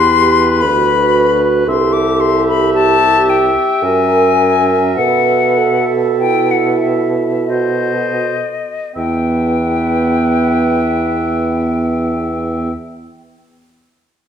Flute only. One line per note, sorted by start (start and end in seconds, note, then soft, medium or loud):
0.00 0.62 C6 loud
0.61 1.41 B5 medium
1.67 1.94 C6 medium
1.93 2.22 D6 medium
2.20 2.47 C6 medium
2.48 2.74 B5 medium
2.74 3.31 A5 loud
3.30 3.85 G5 medium
3.83 4.96 G#5 loud
4.97 5.85 F#5 medium
6.19 6.52 G5 medium
6.51 6.79 F#5 medium
6.80 7.51 E5 medium
7.49 8.96 D#5 medium
8.96 12.72 G5 medium